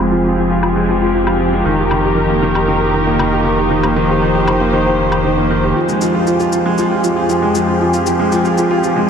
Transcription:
Already playing: F1 F3 C4 F4 G4 G#4
0.00 G#3
0.11 F3
0.24 F4
0.37 F3
0.50 F4
0.63 F3, low woodblock
0.76 G#3
0.89 F3
1.01 F4
1.14 F3
1.27 F4, low woodblock
1.40 F3
1.53 G#3
1.65 F1 D#3 D#4 A#4
1.78 G4
1.91 D#3, low woodblock
2.04 G4
2.17 D#3
2.30 A#3
2.42 D#3
2.55 G4, low woodblock
2.68 D#3
2.81 G4
2.94 D#3
3.07 A#3
3.19 D#3, low woodblock
3.32 G4
3.45 D#3
3.58 G4
3.70 D#3 C5
3.83 A#3, low woodblock
3.96 D#3
4.09 G4
4.22 D#3
4.35 G4
4.48 D#3, low woodblock
4.61 A#3
4.73 D#3
4.86 G4
4.99 D#3
5.12 G4, low woodblock
5.25 D#3
5.38 A#3
5.50 D#3
5.63 G4
5.76 F2 F3 G4 G#4
5.89 G#3, shaker
6.01 F3, shaker
6.15 F4
6.27 F3, shaker
6.40 F4, shaker
6.53 F3, shaker
6.66 G#3
6.78 F3, shaker
6.91 F4
7.04 F3, shaker
7.17 F4
7.29 F3, shaker
7.42 G#3
7.55 F3, shaker
7.68 F4
7.81 F3
7.93 F4, shaker
8.06 F3, shaker
8.19 G#3
8.32 F3, shaker
8.45 F4, shaker
8.58 F3, shaker
8.71 F4
8.83 F3, shaker
8.96 G#3

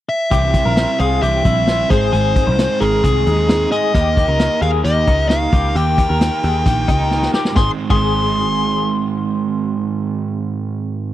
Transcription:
0.09 E5
0.31 C2 C3 E3 G3 C4 E4 G4 C5, kick, closed hi-hat
0.54 G3 C4 E4 C5, kick, closed hi-hat
0.65 A#1 A#4
0.76 G3 C4 E4 C5, snare, closed hi-hat
0.99 C2 G3 C4 E4 G#4 C5 F5, closed hi-hat
1.22 C2 C3 E3 G3 C4 E4 G4 C5 E5, closed hi-hat
1.44 A#1 G3 C4 E4 C5, kick, closed hi-hat
1.67 G3 C4 E4 C5, snare, closed hi-hat
1.90 G#1 G#3 C4 D#4 G#4 C5, kick, closed hi-hat
2.13 G#1 G#2 D#3 G#3 C4 D#4 G#4, closed hi-hat
2.36 G#3 C4 D#4 G#4, kick, closed hi-hat
2.47 C2 C5
2.58 G#3 C4 D#4 G#4, snare, closed hi-hat
2.80 G#1 G#3 C4 D#4 G#4 A#4, closed hi-hat
3.02 C2 G#2 D#3 G#3 C4 D#4 G#4, kick, closed hi-hat
3.26 D#2 G#3 C4 D#4 G#4, closed hi-hat
3.48 G#3 C4 D#4 G#4, snare, closed hi-hat
3.70 G#3 C4 D#4 G#4 D#5, closed hi-hat
3.94 D#2 D#3 A#3 D#4 G4 A#4, kick, closed hi-hat
4.16 D#4 G4 A#4, kick, closed hi-hat
4.28 C#2 A#4
4.39 A#3 D#4 G4 A#4, snare, closed hi-hat
4.62 D#2 D#4 G4 G#4 A#4 F5, closed hi-hat
4.84 D#2 D#3 A#3 D#4 G4 A#4 D#5, closed hi-hat
5.06 C#2 D#4 G4 A#4, kick, closed hi-hat
5.29 A#3 D#4 G4 A#4 F5, snare, closed hi-hat
5.52 C#2 D#4 G4 A#4, kick, closed hi-hat
5.75 D#2 D#3 A#3 D#4 G4 A#4 G5, closed hi-hat
5.98 D#4 G4 A#4, kick, closed hi-hat
6.09 D#2 A#4
6.21 A#3 D#4 G4 A#4, snare, closed hi-hat
6.43 D#2 D#4 G4 G#4 A#4, closed hi-hat
6.66 A#1 D#3 A#3 D#4 G4 A#4, kick, closed hi-hat
6.87 C#2 D#4 G4 A#4, kick, closed hi-hat
7.11 A#3 D#4 G4 A#4, snare
7.22 snare
7.33 D#4 G4 A#4, snare
7.45 snare
7.52 G#2 D#3, snare
7.56 G#1 G#3 C4 G#4 C6, kick
7.62 D#4 C5
7.86 G#2 D#3
7.90 G#1 G#3 C4 G#4 C6, kick, crash
7.95 D#4 C5

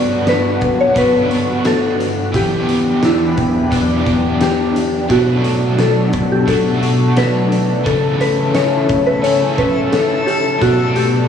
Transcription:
Already playing: G2 D3 G3 B3 D4 F#4 D5
0.27 D4 B4, snare, closed hi-hat
0.61 B3, kick, closed hi-hat
0.81 C#5
0.94 G3 B3 D4 B4, kick, closed hi-hat
1.00 F#4
1.30 B3 D4 F#4, closed hi-hat
1.35 B3
1.65 F#4 A4, snare, closed hi-hat
1.99 D4, closed hi-hat
2.32 E2 E3 B3 D4 G4, kick, closed hi-hat
2.38 D4 G4
2.68 B3, closed hi-hat
3.03 D4 E4, snare, closed hi-hat
3.37 B3, kick, closed hi-hat
3.71 E3 B3 D4, kick, closed hi-hat
3.76 G4
4.05 B3 D4 G4, kick, closed hi-hat
4.10 B3
4.40 G4, snare, closed hi-hat
4.75 D4, closed hi-hat
5.08 B2 F#3 F#4 A4, kick, closed hi-hat
5.12 A3 D4 F#4
5.44 A3, closed hi-hat
5.78 D4 A4, snare, closed hi-hat
6.13 A3, kick, closed hi-hat
6.32 G4
6.46 F#3 A3 D4 A4, kick, closed hi-hat
6.52 F#4
6.81 A3 D4 F#4, closed hi-hat
6.86 A3
7.17 F#4 B4, snare, closed hi-hat
7.51 D4, closed hi-hat
7.83 C#3 E3 C#4 E4 A4, kick, closed hi-hat
7.88 A3 C#4 A4
8.21 A3 B4, closed hi-hat
8.54 C#4 C#5, snare, closed hi-hat
8.89 A3, kick, closed hi-hat
9.07 B4
9.22 E3 A3 C#4 C#5, closed hi-hat
9.27 A4
9.56 A3 C#4 A4 B4, kick, closed hi-hat
9.61 A3
9.92 A4, snare, closed hi-hat
10.26 C#4 G4, closed hi-hat
10.59 B2 B3 D4 F#4, kick, closed hi-hat
10.64 A3 D4
10.96 A3 G4, closed hi-hat

